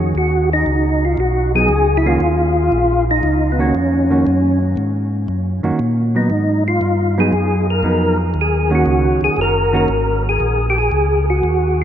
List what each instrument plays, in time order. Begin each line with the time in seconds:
Already playing: tonewheel organ F2, hollow-body jazz guitar D#3 A#3 C#4 F#4
0.15 tonewheel organ D#2 F#4
0.53 tonewheel organ D#4
0.66 tonewheel organ C#2
1.05 tonewheel organ F4
1.17 tonewheel organ B1 F#4
1.55 hollow-body jazz guitar F#3 B3 D#4, tonewheel organ G#4
1.69 tonewheel organ C#2
1.97 tonewheel organ E4
2.06 hollow-body jazz guitar D#3 A#3 C#4 F#4, tonewheel organ F4
2.20 tonewheel organ D#2
2.72 tonewheel organ A#1
3.11 tonewheel organ D#4
3.23 tonewheel organ C#2
3.52 tonewheel organ B3
3.59 hollow-body jazz guitar D#3 A#3 C#4 F#4, tonewheel organ C#4
3.75 tonewheel organ F2
4.10 hollow-body jazz guitar D#3 A#3 C#4 F#4
4.27 tonewheel organ F#2
4.77 tonewheel organ G#2
5.28 tonewheel organ F#2
5.63 tonewheel organ F#2, hollow-body jazz guitar D#3 A#3 C#4 F#4
5.79 tonewheel organ A#2
6.15 hollow-body jazz guitar F#3 B3 D#4, tonewheel organ D#4
6.30 tonewheel organ G#2
6.68 tonewheel organ F4
6.81 tonewheel organ G2
7.18 hollow-body jazz guitar F#3 B3 D#4, tonewheel organ G#4
7.33 tonewheel organ F#2
7.70 tonewheel organ A#4
7.83 tonewheel organ F2, hollow-body jazz guitar F#3 B3 D#4
8.34 tonewheel organ D#2
8.41 tonewheel organ G#4
8.70 hollow-body jazz guitar D#3 A#3 C#4 F#4
8.75 tonewheel organ F#4
8.86 tonewheel organ C#2
9.21 tonewheel organ C#2 G#4
9.36 tonewheel organ F#1
9.41 tonewheel organ A#4
9.73 hollow-body jazz guitar D#3 A#3 C#4 F#4, tonewheel organ A#4
9.88 tonewheel organ G#1
10.29 tonewheel organ G#4
10.40 tonewheel organ A#1
10.70 tonewheel organ G4
10.78 tonewheel organ G#4
10.92 tonewheel organ C#2
11.30 tonewheel organ F#4
11.43 tonewheel organ D#2